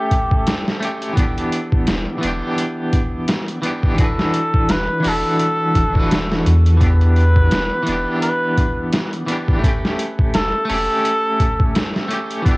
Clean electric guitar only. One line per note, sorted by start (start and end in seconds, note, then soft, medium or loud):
0.00 0.76 A3 loud
0.00 0.79 C#4 medium
0.00 0.81 G4 loud
0.80 1.12 A3 medium
0.80 1.14 C#4 medium
0.85 1.15 G4 loud
1.13 2.17 E3 medium
1.13 2.18 B3 medium
1.19 2.20 D4 medium
1.19 2.22 G4 medium
2.18 3.58 E3 medium
2.18 3.60 B3 medium
2.24 3.62 D4 medium
2.24 3.63 G4 loud
3.62 3.94 E3 medium
3.62 3.95 B3 medium
3.62 3.96 D4 medium
3.67 3.97 G4 loud
3.95 4.99 E3 medium
3.95 5.00 D4 medium
4.00 5.02 F#4 medium
4.00 4.04 A4 medium
4.04 5.04 B4 medium
5.00 5.88 E3 loud
5.00 5.90 D4 medium
5.05 5.91 F#4 medium
5.05 5.92 A4 medium
5.09 5.94 B4 loud
5.90 6.75 E3 medium
5.90 6.76 D4 medium
5.94 6.77 F#4 medium
5.94 6.78 A4 medium
5.99 6.80 B4 loud
6.77 7.81 E3 medium
6.77 7.83 B3 medium
6.83 7.85 D4 medium
6.83 7.86 G4 medium
7.83 9.23 E3 loud
7.83 9.25 B3 medium
7.88 9.26 D4 medium
7.88 9.28 G4 loud
9.26 9.59 E3 medium
9.26 9.58 B3 medium
9.26 9.61 D4 medium
9.31 9.62 G4 medium
9.59 10.63 A3 medium
9.64 10.66 C#4 medium
9.68 10.68 G4 medium
10.65 12.05 A3 loud
10.69 12.08 C#4 medium
10.74 12.10 G4 loud
12.08 12.41 A3 medium
12.08 12.42 C#4 medium
12.13 12.44 G4 medium
12.42 12.57 E3 medium
12.42 12.57 B3 medium
12.48 12.57 D4 medium
12.48 12.57 G4 medium